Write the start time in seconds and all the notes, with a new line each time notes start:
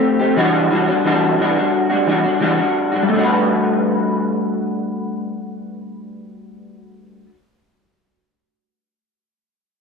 Already playing: A3 C4 G4
0.19 A3 C4 G4
0.37 E3 G3 D4 F#4
0.71 E3 G3 D4 F#4
0.88 G3 D4 F#4
1.05 E3 G3 D4 F#4
1.39 E3 G3 D4 F#4
1.56 G3 D4 F#4
1.90 G3 D4 F#4
2.07 E3 G3 D4 F#4
2.24 G3 D4 F#4
2.40 E3 G3 D4 F#4
2.58 G3 D4 F#4
2.92 G3 D4 F#4
3.03 G3
3.09 A3
3.14 D4
3.19 F#4
3.23 B4